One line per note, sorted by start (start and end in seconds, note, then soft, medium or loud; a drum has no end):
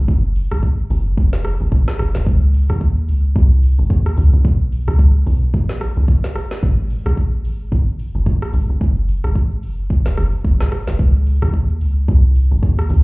0.08 0.49 F#1 loud
0.08 kick loud
0.08 shaker medium
0.24 shaker soft
0.36 open hi-hat medium
0.36 shaker medium
0.51 0.88 G#1 medium
0.51 cross-stick loud
0.51 shaker medium
0.62 kick medium
0.62 shaker medium
0.79 shaker soft
0.90 1.16 F#1 loud
0.90 open hi-hat medium
0.90 shaker medium
1.06 shaker soft
1.17 1.58 F1 loud
1.17 kick loud
1.17 shaker medium
1.33 snare medium
1.33 shaker medium
1.45 cross-stick loud
1.45 open hi-hat soft
1.45 shaker medium
1.61 1.71 F#1 loud
1.61 shaker medium
1.72 1.87 G#1 loud
1.72 kick loud
1.72 shaker medium
1.88 cross-stick medium
1.88 snare medium
1.88 shaker soft
1.99 2.14 F#1 loud
1.99 cross-stick loud
1.99 open hi-hat medium
1.99 shaker loud
2.15 2.28 F1 medium
2.15 snare medium
2.15 shaker medium
2.26 2.67 C#2 loud
2.26 kick loud
2.26 shaker medium
2.42 shaker soft
2.54 open hi-hat medium
2.54 shaker medium
2.69 3.10 D#2 medium
2.69 cross-stick medium
2.69 shaker medium
2.81 kick medium
2.81 shaker medium
2.97 shaker soft
3.08 3.34 C#2 loud
3.08 open hi-hat medium
3.08 shaker medium
3.24 shaker soft
3.35 3.76 C2 loud
3.35 kick loud
3.35 shaker medium
3.52 shaker medium
3.63 open hi-hat soft
3.63 shaker medium
3.79 3.89 G#1 medium
3.79 shaker medium
3.90 4.16 D#2 loud
3.90 kick loud
3.90 shaker medium
4.06 cross-stick medium
4.06 shaker soft
4.17 4.32 C#2 loud
4.17 open hi-hat medium
4.17 shaker loud
4.33 4.44 C2 medium
4.33 shaker medium
4.45 4.85 B1 loud
4.45 kick loud
4.45 shaker medium
4.60 shaker soft
4.72 open hi-hat medium
4.72 shaker medium
4.88 5.24 C#2 medium
4.88 cross-stick medium
4.88 shaker medium
4.99 kick medium
4.99 shaker medium
5.15 shaker soft
5.26 5.52 B1 loud
5.26 open hi-hat medium
5.26 shaker medium
5.42 shaker soft
5.54 5.94 A#1 loud
5.54 kick loud
5.54 shaker medium
5.69 snare medium
5.69 shaker medium
5.81 cross-stick loud
5.81 open hi-hat soft
5.81 shaker medium
5.97 6.08 B1 medium
5.97 shaker medium
6.08 kick loud
6.08 shaker medium
6.24 snare medium
6.24 shaker soft
6.35 cross-stick loud
6.35 open hi-hat medium
6.35 shaker medium
6.51 snare medium
6.51 shaker medium
6.63 7.03 G#1 loud
6.63 kick loud
6.63 shaker medium
6.78 shaker soft
6.90 open hi-hat medium
6.90 shaker medium
7.06 7.46 A#1 loud
7.06 cross-stick loud
7.06 shaker medium
7.17 kick medium
7.17 shaker medium
7.33 shaker soft
7.45 7.70 G#1 loud
7.45 open hi-hat medium
7.45 shaker medium
7.61 shaker soft
7.72 8.12 G1 loud
7.72 kick loud
7.72 shaker medium
7.88 shaker medium
7.99 open hi-hat medium
7.99 shaker medium
8.15 8.26 F1 medium
8.15 shaker medium
8.26 8.52 A#1 loud
8.26 kick loud
8.26 shaker medium
8.42 cross-stick loud
8.42 shaker soft
8.53 8.69 G#1 loud
8.53 open hi-hat medium
8.53 shaker loud
8.70 8.80 G1 medium
8.70 shaker medium
8.81 9.22 F#1 loud
8.81 kick loud
8.81 shaker medium
8.96 shaker soft
9.08 open hi-hat medium
9.08 shaker medium
9.24 9.64 G#1 medium
9.24 cross-stick medium
9.24 shaker medium
9.35 kick medium
9.35 shaker medium
9.51 shaker soft
9.63 9.88 F#1 loud
9.63 open hi-hat medium
9.63 shaker medium
9.79 shaker soft
9.90 kick loud
9.90 shaker medium
10.06 10.17 F1 loud
10.06 snare medium
10.06 shaker medium
10.17 10.32 F#1 loud
10.17 cross-stick loud
10.17 open hi-hat soft
10.17 shaker medium
10.33 shaker medium
10.44 10.59 F1 medium
10.44 kick loud
10.44 shaker medium
10.60 10.71 G#1 medium
10.60 cross-stick medium
10.60 snare medium
10.60 shaker soft
10.71 cross-stick loud
10.71 open hi-hat medium
10.71 shaker medium
10.88 11.01 F#1 medium
10.88 snare medium
10.88 shaker medium
10.99 11.40 C#2 loud
10.99 kick loud
10.99 shaker medium
11.15 shaker soft
11.26 open hi-hat medium
11.26 shaker medium
11.42 11.82 D#2 medium
11.42 cross-stick loud
11.42 shaker medium
11.53 kick medium
11.53 shaker medium
11.69 shaker soft
11.81 12.07 C#2 loud
11.81 open hi-hat medium
11.81 shaker medium
11.97 shaker soft
12.08 12.49 C2 loud
12.08 kick loud
12.08 shaker medium
12.25 shaker medium
12.35 open hi-hat soft
12.35 shaker medium
12.51 12.62 G#1 medium
12.51 shaker medium
12.63 12.88 D#2 loud
12.63 kick loud
12.63 shaker medium
12.79 cross-stick loud
12.79 shaker soft
12.90 13.03 C#2 loud
12.90 open hi-hat medium
12.90 shaker loud